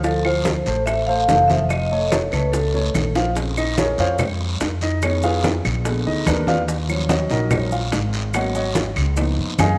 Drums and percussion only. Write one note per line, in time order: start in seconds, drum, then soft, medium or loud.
0.04 high bongo medium
0.04 high conga soft
0.04 long guiro medium
0.04 maracas medium
0.25 high conga soft
0.25 claves medium
0.45 high bongo medium
0.45 high conga medium
0.45 short guiro medium
0.45 maracas medium
0.66 high conga soft
0.66 short guiro medium
0.66 maracas soft
0.87 high bongo medium
0.87 high conga soft
0.87 long guiro medium
0.87 claves medium
0.87 maracas medium
1.08 high conga soft
1.29 high bongo medium
1.29 low bongo medium
1.29 high conga medium
1.29 short guiro medium
1.29 maracas medium
1.49 high conga medium
1.49 short guiro medium
1.49 maracas soft
1.70 high bongo medium
1.70 high conga soft
1.70 long guiro medium
1.70 claves medium
1.70 maracas medium
1.91 high conga soft
2.12 high bongo medium
2.12 high conga medium
2.12 short guiro medium
2.12 maracas medium
2.32 high bongo soft
2.32 high conga soft
2.32 short guiro medium
2.32 claves medium
2.32 maracas soft
2.53 high bongo medium
2.53 high conga soft
2.53 long guiro medium
2.53 maracas medium
2.74 high bongo medium
2.74 high conga soft
2.94 low bongo medium
2.94 high conga medium
2.94 short guiro medium
2.94 claves medium
2.94 maracas medium
3.15 low bongo medium
3.15 short guiro medium
3.15 maracas soft
3.35 high bongo medium
3.35 high conga soft
3.35 long guiro medium
3.35 maracas medium
3.57 high conga soft
3.57 claves medium
3.57 maracas medium
3.77 high bongo medium
3.77 high conga medium
3.77 short guiro medium
3.77 maracas medium
3.98 high conga soft
3.98 short guiro medium
3.98 maracas soft
4.18 high bongo medium
4.18 high conga soft
4.18 low conga medium
4.18 long guiro medium
4.18 claves medium
4.18 maracas medium
4.40 high conga soft
4.60 high bongo medium
4.60 low bongo medium
4.60 high conga soft
4.60 short guiro medium
4.60 maracas medium
4.81 high conga soft
4.81 short guiro medium
4.81 maracas soft
5.02 high bongo medium
5.02 high conga soft
5.02 long guiro medium
5.02 claves medium
5.02 maracas medium
5.22 high bongo soft
5.22 high conga soft
5.22 maracas medium
5.44 high bongo medium
5.44 high conga medium
5.44 short guiro medium
5.44 maracas medium
5.64 high bongo soft
5.64 high conga soft
5.64 short guiro medium
5.64 claves medium
5.64 maracas soft
5.85 high bongo medium
5.85 high conga soft
5.85 long guiro medium
5.85 maracas medium
6.06 high conga soft
6.26 high bongo medium
6.26 low bongo medium
6.26 high conga medium
6.26 short guiro medium
6.26 claves medium
6.26 maracas medium
6.47 high bongo soft
6.47 high conga medium
6.47 short guiro medium
6.47 maracas soft
6.68 high bongo medium
6.68 high conga soft
6.68 long guiro medium
6.68 maracas medium
6.89 high conga soft
6.89 claves medium
6.89 maracas medium
7.09 high bongo medium
7.09 high conga medium
7.09 short guiro medium
7.09 maracas medium
7.30 high conga soft
7.30 short guiro medium
7.30 maracas soft
7.51 high bongo medium
7.51 high conga soft
7.51 low conga medium
7.51 long guiro medium
7.51 claves medium
7.51 maracas medium
7.71 high conga soft
7.71 maracas medium
7.92 high bongo medium
7.92 low bongo medium
7.92 high conga soft
7.92 short guiro medium
7.92 maracas medium
8.13 high conga soft
8.13 short guiro medium
8.13 maracas soft
8.33 high bongo medium
8.33 high conga soft
8.33 long guiro medium
8.33 claves medium
8.33 maracas medium
8.55 high bongo soft
8.55 high conga soft
8.55 maracas medium
8.75 high bongo medium
8.75 high conga medium
8.75 short guiro medium
8.75 maracas medium
8.96 high bongo soft
8.96 high conga soft
8.96 short guiro medium
8.96 claves medium
8.96 maracas soft
9.16 high bongo medium
9.16 high conga soft
9.16 long guiro medium
9.16 maracas medium
9.38 high conga soft
9.59 high bongo medium
9.59 low bongo medium
9.59 high conga medium
9.59 short guiro medium
9.59 claves medium
9.59 maracas medium